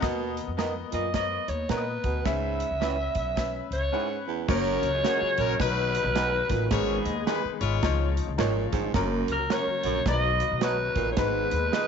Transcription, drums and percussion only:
0.02 kick loud
0.02 snare loud
0.02 closed hi-hat medium
0.37 closed hi-hat medium
0.59 snare loud
0.59 closed hi-hat medium
0.92 closed hi-hat medium
1.14 kick medium
1.14 snare medium
1.14 closed hi-hat medium
1.48 closed hi-hat medium
1.69 snare loud
1.69 closed hi-hat medium
2.04 kick medium
2.04 closed hi-hat medium
2.25 kick loud
2.25 snare loud
2.25 closed hi-hat medium
2.60 closed hi-hat medium
2.82 snare loud
2.82 closed hi-hat medium
3.15 kick medium
3.15 closed hi-hat medium
3.37 kick medium
3.37 snare loud
3.37 closed hi-hat medium
3.72 closed hi-hat medium
4.49 kick loud
4.49 snare loud
4.49 crash loud
4.83 closed hi-hat medium
5.05 snare loud
5.05 closed hi-hat medium
5.38 closed hi-hat medium
5.60 kick medium
5.60 snare loud
5.60 closed hi-hat medium
5.95 closed hi-hat medium
6.16 snare loud
6.16 closed hi-hat medium
6.50 kick loud
6.50 snare soft
6.50 closed hi-hat medium
6.71 kick loud
6.71 snare loud
6.71 closed hi-hat medium
7.05 closed hi-hat medium
7.27 snare loud
7.27 closed hi-hat medium
7.61 closed hi-hat medium
7.83 kick medium
7.83 snare loud
7.83 closed hi-hat medium
8.17 closed hi-hat medium
8.39 snare loud
8.39 closed hi-hat medium
8.73 kick medium
8.73 snare soft
8.73 closed hi-hat medium
8.94 kick loud
8.94 snare loud
8.94 closed hi-hat medium
9.28 closed hi-hat medium
9.50 snare loud
9.50 closed hi-hat medium
9.84 closed hi-hat medium
10.06 kick medium
10.06 snare loud
10.06 closed hi-hat medium
10.40 closed hi-hat medium
10.61 snare loud
10.61 closed hi-hat medium
10.96 kick medium
10.96 closed hi-hat medium
11.17 kick loud
11.17 snare loud
11.17 closed hi-hat medium
11.51 closed hi-hat medium
11.73 snare loud
11.73 closed hi-hat medium

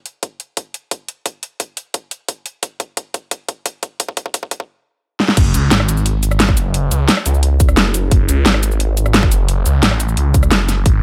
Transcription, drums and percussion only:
0.06 closed hi-hat medium
0.23 kick loud
0.23 closed hi-hat medium
0.40 closed hi-hat medium
0.57 kick loud
0.57 closed hi-hat medium
0.74 closed hi-hat medium
0.91 kick loud
0.91 closed hi-hat medium
1.08 closed hi-hat medium
1.26 kick loud
1.26 closed hi-hat medium
1.43 closed hi-hat medium
1.60 kick loud
1.60 closed hi-hat medium
1.77 closed hi-hat medium
1.94 kick loud
1.94 closed hi-hat medium
2.11 closed hi-hat medium
2.28 kick loud
2.28 closed hi-hat medium
2.46 closed hi-hat medium
2.63 kick loud
2.63 closed hi-hat medium
2.80 kick loud
2.80 closed hi-hat medium
2.97 kick loud
2.97 closed hi-hat loud
3.14 kick loud
3.14 closed hi-hat medium
3.31 kick loud
3.31 closed hi-hat loud
3.49 kick loud
3.49 closed hi-hat medium
3.66 kick loud
3.66 closed hi-hat loud
3.83 kick loud
3.83 closed hi-hat medium
4.00 kick loud
4.00 closed hi-hat loud
4.08 kick medium
4.17 kick loud
4.17 closed hi-hat medium
4.26 kick loud
4.34 kick loud
4.34 closed hi-hat loud
4.43 kick medium
4.51 kick loud
4.51 closed hi-hat medium
4.60 kick medium
5.20 snare medium
5.28 snare medium
5.37 kick loud
5.37 closed hi-hat loud
5.37 crash loud
5.54 closed hi-hat medium
5.54 cabasa medium
5.71 snare loud
5.71 closed hi-hat medium
5.80 cross-stick medium
5.89 closed hi-hat medium
5.89 cabasa medium
5.97 cabasa soft
6.06 closed hi-hat loud
6.23 closed hi-hat medium
6.23 cabasa medium
6.31 cross-stick soft
6.31 cabasa soft
6.40 snare loud
6.40 closed hi-hat loud
6.48 kick loud
6.48 cross-stick soft
6.57 closed hi-hat medium
6.57 cabasa medium
6.74 closed hi-hat loud
6.91 closed hi-hat medium
6.91 cabasa medium
7.09 snare loud
7.09 closed hi-hat medium
7.17 cross-stick medium
7.26 closed hi-hat medium
7.26 cabasa medium
7.34 cabasa soft
7.43 closed hi-hat loud
7.60 kick loud
7.60 closed hi-hat medium
7.60 cabasa medium
7.69 cross-stick soft
7.69 cabasa soft
7.77 snare loud
7.77 closed hi-hat loud
7.94 closed hi-hat medium
7.94 cabasa medium
8.11 kick loud
8.11 closed hi-hat medium
8.29 closed hi-hat medium
8.29 cabasa medium
8.46 snare loud
8.46 closed hi-hat medium
8.54 cross-stick medium
8.63 closed hi-hat medium
8.63 cabasa medium
8.71 cabasa soft
8.80 closed hi-hat loud
8.97 closed hi-hat medium
8.97 cabasa medium
9.06 cross-stick soft
9.06 cabasa soft
9.14 snare loud
9.14 closed hi-hat medium
9.23 kick loud
9.23 cross-stick soft
9.31 closed hi-hat medium
9.31 cabasa medium
9.49 closed hi-hat medium
9.66 closed hi-hat medium
9.66 cabasa medium
9.83 snare loud
9.83 closed hi-hat medium
9.91 cross-stick medium
10.00 closed hi-hat medium
10.00 cabasa medium
10.09 cabasa soft
10.17 closed hi-hat medium
10.34 kick loud
10.34 closed hi-hat medium
10.34 cabasa medium
10.43 cross-stick soft
10.43 cabasa soft
10.51 snare loud
10.51 closed hi-hat medium
10.69 snare soft
10.69 closed hi-hat medium
10.69 cabasa medium
10.86 kick loud
10.86 closed hi-hat medium

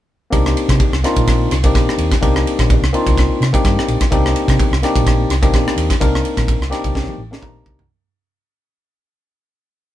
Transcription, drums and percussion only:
0.33 kick medium
0.33 ride medium
0.46 cross-stick medium
0.57 ride medium
0.69 kick medium
0.69 cross-stick medium
0.69 ride medium
0.80 kick loud
0.80 ride medium
0.93 cross-stick medium
1.04 cross-stick medium
1.04 ride medium
1.16 kick medium
1.16 ride medium
1.28 kick medium
1.28 cross-stick medium
1.28 ride medium
1.51 cross-stick medium
1.51 ride medium
1.64 kick medium
1.64 ride medium
1.75 kick medium
1.75 cross-stick medium
1.75 ride medium
1.89 cross-stick medium
1.98 ride medium
2.11 kick medium
2.11 cross-stick medium
2.11 ride medium
2.23 kick medium
2.23 ride medium
2.36 cross-stick medium
2.47 ride medium
2.59 kick medium
2.59 cross-stick medium
2.59 ride medium
2.70 kick loud
2.70 ride medium
2.84 cross-stick medium
2.94 ride medium
3.07 kick medium
3.07 ride medium
3.17 kick medium
3.17 cross-stick medium
3.17 ride medium
3.42 cross-stick medium
3.42 ride soft
3.54 kick medium
3.54 ride medium
3.65 kick medium
3.65 cross-stick medium
3.65 ride soft
3.79 cross-stick medium
3.88 ride medium
4.01 kick medium
4.01 cross-stick medium
4.01 ride medium
4.12 kick medium
4.12 ride medium
4.26 cross-stick medium
4.36 ride medium
4.48 kick medium
4.48 cross-stick medium
4.48 ride medium
4.60 kick loud
4.60 ride medium
4.73 cross-stick medium
4.83 cross-stick medium
4.83 ride medium
4.96 kick medium
4.96 ride medium
5.07 kick medium
5.07 cross-stick medium
5.07 ride medium
5.30 cross-stick medium
5.30 ride medium
5.43 kick medium
5.43 ride medium
5.54 kick medium
5.54 cross-stick medium
5.54 ride medium
5.68 cross-stick medium
5.78 ride medium
5.90 kick medium
5.90 cross-stick medium
5.90 ride medium
6.01 kick medium
6.01 ride medium
6.15 cross-stick medium
6.25 ride medium
6.37 kick medium
6.37 cross-stick medium
6.37 ride medium
6.48 kick loud
6.48 ride medium
6.62 cross-stick medium
6.72 cross-stick medium
6.72 ride medium
6.84 kick medium
6.84 ride medium
6.95 kick medium
6.95 snare medium
7.08 high tom soft
7.33 snare medium
7.42 kick loud
7.42 mid tom medium
7.66 kick medium
7.79 floor tom medium

